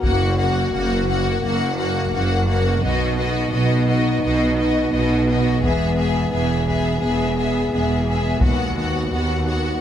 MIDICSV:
0, 0, Header, 1, 8, 480
1, 0, Start_track
1, 0, Key_signature, 5, "major"
1, 0, Tempo, 697674
1, 30, Time_signature, 4, 2, 24, 8
1, 6748, End_track
2, 0, Start_track
2, 0, Title_t, "Violin section"
2, 0, Program_c, 0, 48
2, 17, Note_on_c, 0, 78, 51
2, 256, Note_off_c, 0, 78, 0
2, 264, Note_on_c, 0, 78, 44
2, 502, Note_off_c, 0, 78, 0
2, 514, Note_on_c, 0, 78, 48
2, 738, Note_off_c, 0, 78, 0
2, 746, Note_on_c, 0, 78, 42
2, 983, Note_off_c, 0, 78, 0
2, 997, Note_on_c, 0, 78, 44
2, 1215, Note_off_c, 0, 78, 0
2, 1223, Note_on_c, 0, 78, 43
2, 1462, Note_off_c, 0, 78, 0
2, 1469, Note_on_c, 0, 78, 49
2, 1705, Note_off_c, 0, 78, 0
2, 1717, Note_on_c, 0, 78, 45
2, 1948, Note_on_c, 0, 75, 52
2, 1949, Note_off_c, 0, 78, 0
2, 2180, Note_off_c, 0, 75, 0
2, 2188, Note_on_c, 0, 75, 49
2, 2410, Note_off_c, 0, 75, 0
2, 2418, Note_on_c, 0, 75, 48
2, 2653, Note_off_c, 0, 75, 0
2, 2661, Note_on_c, 0, 75, 46
2, 2898, Note_off_c, 0, 75, 0
2, 2906, Note_on_c, 0, 75, 48
2, 3143, Note_off_c, 0, 75, 0
2, 3152, Note_on_c, 0, 75, 49
2, 3380, Note_off_c, 0, 75, 0
2, 3389, Note_on_c, 0, 75, 45
2, 3625, Note_off_c, 0, 75, 0
2, 3634, Note_on_c, 0, 75, 42
2, 3867, Note_off_c, 0, 75, 0
2, 3880, Note_on_c, 0, 76, 45
2, 4104, Note_off_c, 0, 76, 0
2, 4113, Note_on_c, 0, 76, 41
2, 4347, Note_off_c, 0, 76, 0
2, 4355, Note_on_c, 0, 76, 44
2, 4588, Note_off_c, 0, 76, 0
2, 4601, Note_on_c, 0, 76, 43
2, 4831, Note_off_c, 0, 76, 0
2, 4848, Note_on_c, 0, 76, 44
2, 5074, Note_off_c, 0, 76, 0
2, 5097, Note_on_c, 0, 76, 37
2, 5315, Note_off_c, 0, 76, 0
2, 5324, Note_on_c, 0, 76, 38
2, 5552, Note_off_c, 0, 76, 0
2, 5568, Note_on_c, 0, 76, 38
2, 5794, Note_off_c, 0, 76, 0
2, 5807, Note_on_c, 0, 78, 44
2, 6031, Note_off_c, 0, 78, 0
2, 6040, Note_on_c, 0, 78, 36
2, 6270, Note_off_c, 0, 78, 0
2, 6280, Note_on_c, 0, 78, 39
2, 6507, Note_off_c, 0, 78, 0
2, 6515, Note_on_c, 0, 78, 36
2, 6747, Note_off_c, 0, 78, 0
2, 6748, End_track
3, 0, Start_track
3, 0, Title_t, "Violin section"
3, 0, Program_c, 1, 48
3, 35, Note_on_c, 1, 66, 53
3, 268, Note_off_c, 1, 66, 0
3, 277, Note_on_c, 1, 66, 46
3, 509, Note_off_c, 1, 66, 0
3, 531, Note_on_c, 1, 66, 47
3, 754, Note_off_c, 1, 66, 0
3, 763, Note_on_c, 1, 66, 46
3, 992, Note_off_c, 1, 66, 0
3, 1007, Note_on_c, 1, 66, 50
3, 1227, Note_off_c, 1, 66, 0
3, 1235, Note_on_c, 1, 66, 43
3, 1465, Note_off_c, 1, 66, 0
3, 1473, Note_on_c, 1, 66, 45
3, 1702, Note_off_c, 1, 66, 0
3, 1710, Note_on_c, 1, 66, 43
3, 1946, Note_off_c, 1, 66, 0
3, 1962, Note_on_c, 1, 66, 50
3, 2187, Note_off_c, 1, 66, 0
3, 2196, Note_on_c, 1, 66, 47
3, 2428, Note_off_c, 1, 66, 0
3, 2439, Note_on_c, 1, 66, 49
3, 2670, Note_off_c, 1, 66, 0
3, 2678, Note_on_c, 1, 66, 42
3, 2910, Note_off_c, 1, 66, 0
3, 2921, Note_on_c, 1, 66, 51
3, 3151, Note_off_c, 1, 66, 0
3, 3165, Note_on_c, 1, 66, 41
3, 3393, Note_off_c, 1, 66, 0
3, 3404, Note_on_c, 1, 66, 45
3, 3633, Note_off_c, 1, 66, 0
3, 3652, Note_on_c, 1, 66, 44
3, 3876, Note_off_c, 1, 66, 0
3, 3879, Note_on_c, 1, 68, 57
3, 4110, Note_off_c, 1, 68, 0
3, 4123, Note_on_c, 1, 68, 45
3, 4349, Note_off_c, 1, 68, 0
3, 4357, Note_on_c, 1, 68, 44
3, 4589, Note_off_c, 1, 68, 0
3, 4597, Note_on_c, 1, 68, 45
3, 4817, Note_off_c, 1, 68, 0
3, 4826, Note_on_c, 1, 68, 47
3, 5063, Note_off_c, 1, 68, 0
3, 5071, Note_on_c, 1, 68, 36
3, 5306, Note_off_c, 1, 68, 0
3, 5323, Note_on_c, 1, 68, 37
3, 5551, Note_off_c, 1, 68, 0
3, 5560, Note_on_c, 1, 68, 37
3, 5790, Note_off_c, 1, 68, 0
3, 5793, Note_on_c, 1, 66, 41
3, 6025, Note_off_c, 1, 66, 0
3, 6033, Note_on_c, 1, 66, 37
3, 6261, Note_off_c, 1, 66, 0
3, 6269, Note_on_c, 1, 66, 38
3, 6499, Note_off_c, 1, 66, 0
3, 6507, Note_on_c, 1, 66, 39
3, 6738, Note_off_c, 1, 66, 0
3, 6748, End_track
4, 0, Start_track
4, 0, Title_t, "French horn section"
4, 0, Program_c, 2, 60
4, 0, Note_on_c, 2, 66, 50
4, 23, Note_on_c, 2, 58, 58
4, 1920, Note_off_c, 2, 58, 0
4, 1922, Note_off_c, 2, 66, 0
4, 1947, Note_on_c, 2, 63, 56
4, 1951, Note_on_c, 2, 59, 59
4, 3752, Note_off_c, 2, 63, 0
4, 3869, Note_on_c, 2, 68, 53
4, 5761, Note_off_c, 2, 68, 0
4, 5762, Note_off_c, 2, 59, 0
4, 5779, Note_on_c, 2, 66, 46
4, 5783, Note_on_c, 2, 59, 46
4, 6748, Note_off_c, 2, 59, 0
4, 6748, Note_off_c, 2, 66, 0
4, 6748, End_track
5, 0, Start_track
5, 0, Title_t, "Viola section"
5, 0, Program_c, 3, 48
5, 9, Note_on_c, 3, 58, 49
5, 249, Note_off_c, 3, 58, 0
5, 258, Note_on_c, 3, 58, 42
5, 485, Note_off_c, 3, 58, 0
5, 494, Note_on_c, 3, 58, 50
5, 737, Note_off_c, 3, 58, 0
5, 745, Note_on_c, 3, 58, 45
5, 971, Note_off_c, 3, 58, 0
5, 979, Note_on_c, 3, 58, 41
5, 1216, Note_off_c, 3, 58, 0
5, 1225, Note_on_c, 3, 58, 46
5, 1457, Note_off_c, 3, 58, 0
5, 1465, Note_on_c, 3, 58, 46
5, 1692, Note_off_c, 3, 58, 0
5, 1700, Note_on_c, 3, 58, 51
5, 1941, Note_off_c, 3, 58, 0
5, 1946, Note_on_c, 3, 59, 50
5, 2180, Note_off_c, 3, 59, 0
5, 2189, Note_on_c, 3, 59, 46
5, 2417, Note_off_c, 3, 59, 0
5, 2425, Note_on_c, 3, 59, 45
5, 2660, Note_off_c, 3, 59, 0
5, 2668, Note_on_c, 3, 59, 45
5, 2904, Note_off_c, 3, 59, 0
5, 2920, Note_on_c, 3, 59, 42
5, 3142, Note_off_c, 3, 59, 0
5, 3150, Note_on_c, 3, 59, 46
5, 3374, Note_off_c, 3, 59, 0
5, 3382, Note_on_c, 3, 59, 43
5, 3621, Note_off_c, 3, 59, 0
5, 3629, Note_on_c, 3, 59, 47
5, 3860, Note_off_c, 3, 59, 0
5, 3868, Note_on_c, 3, 59, 50
5, 4094, Note_off_c, 3, 59, 0
5, 4102, Note_on_c, 3, 59, 42
5, 4341, Note_off_c, 3, 59, 0
5, 4348, Note_on_c, 3, 59, 46
5, 4574, Note_off_c, 3, 59, 0
5, 4582, Note_on_c, 3, 59, 42
5, 4816, Note_off_c, 3, 59, 0
5, 4824, Note_on_c, 3, 59, 40
5, 5060, Note_off_c, 3, 59, 0
5, 5068, Note_on_c, 3, 59, 38
5, 5302, Note_off_c, 3, 59, 0
5, 5311, Note_on_c, 3, 59, 41
5, 5545, Note_off_c, 3, 59, 0
5, 5553, Note_on_c, 3, 59, 40
5, 5773, Note_off_c, 3, 59, 0
5, 5782, Note_on_c, 3, 59, 45
5, 6021, Note_off_c, 3, 59, 0
5, 6029, Note_on_c, 3, 59, 34
5, 6256, Note_off_c, 3, 59, 0
5, 6265, Note_on_c, 3, 59, 41
5, 6497, Note_off_c, 3, 59, 0
5, 6505, Note_on_c, 3, 59, 37
5, 6738, Note_off_c, 3, 59, 0
5, 6748, End_track
6, 0, Start_track
6, 0, Title_t, "Cello section"
6, 0, Program_c, 4, 48
6, 24, Note_on_c, 4, 42, 54
6, 450, Note_off_c, 4, 42, 0
6, 502, Note_on_c, 4, 42, 52
6, 929, Note_off_c, 4, 42, 0
6, 984, Note_on_c, 4, 42, 59
6, 1411, Note_off_c, 4, 42, 0
6, 1464, Note_on_c, 4, 42, 57
6, 1890, Note_off_c, 4, 42, 0
6, 1946, Note_on_c, 4, 47, 56
6, 2372, Note_off_c, 4, 47, 0
6, 2427, Note_on_c, 4, 47, 54
6, 2852, Note_off_c, 4, 47, 0
6, 2909, Note_on_c, 4, 47, 63
6, 3333, Note_off_c, 4, 47, 0
6, 3389, Note_on_c, 4, 47, 55
6, 3813, Note_off_c, 4, 47, 0
6, 3868, Note_on_c, 4, 40, 59
6, 4292, Note_off_c, 4, 40, 0
6, 4347, Note_on_c, 4, 40, 50
6, 4772, Note_off_c, 4, 40, 0
6, 4829, Note_on_c, 4, 40, 51
6, 5253, Note_off_c, 4, 40, 0
6, 5313, Note_on_c, 4, 40, 51
6, 5734, Note_off_c, 4, 40, 0
6, 5794, Note_on_c, 4, 39, 47
6, 6215, Note_off_c, 4, 39, 0
6, 6267, Note_on_c, 4, 39, 48
6, 6691, Note_off_c, 4, 39, 0
6, 6748, End_track
7, 0, Start_track
7, 0, Title_t, "Double bass section"
7, 0, Program_c, 5, 48
7, 22, Note_on_c, 5, 30, 66
7, 449, Note_off_c, 5, 30, 0
7, 509, Note_on_c, 5, 30, 55
7, 933, Note_off_c, 5, 30, 0
7, 988, Note_on_c, 5, 30, 52
7, 1413, Note_off_c, 5, 30, 0
7, 1465, Note_on_c, 5, 30, 60
7, 1891, Note_off_c, 5, 30, 0
7, 1947, Note_on_c, 5, 35, 60
7, 2372, Note_off_c, 5, 35, 0
7, 2424, Note_on_c, 5, 35, 58
7, 2851, Note_off_c, 5, 35, 0
7, 2912, Note_on_c, 5, 35, 54
7, 3334, Note_off_c, 5, 35, 0
7, 3393, Note_on_c, 5, 35, 61
7, 3815, Note_off_c, 5, 35, 0
7, 3870, Note_on_c, 5, 28, 57
7, 4293, Note_off_c, 5, 28, 0
7, 4348, Note_on_c, 5, 28, 54
7, 4772, Note_off_c, 5, 28, 0
7, 4831, Note_on_c, 5, 28, 49
7, 5254, Note_off_c, 5, 28, 0
7, 5309, Note_on_c, 5, 28, 48
7, 5733, Note_off_c, 5, 28, 0
7, 5793, Note_on_c, 5, 39, 51
7, 6214, Note_off_c, 5, 39, 0
7, 6273, Note_on_c, 5, 39, 40
7, 6694, Note_off_c, 5, 39, 0
7, 6748, End_track
8, 0, Start_track
8, 0, Title_t, "Taiko and cinematic ensemble drums"
8, 23, Note_on_c, 9, 41, 56
8, 92, Note_off_c, 9, 41, 0
8, 3872, Note_on_c, 9, 41, 51
8, 3941, Note_off_c, 9, 41, 0
8, 4592, Note_on_c, 9, 41, 28
8, 4661, Note_off_c, 9, 41, 0
8, 5786, Note_on_c, 9, 41, 71
8, 5855, Note_off_c, 9, 41, 0
8, 6748, End_track
0, 0, End_of_file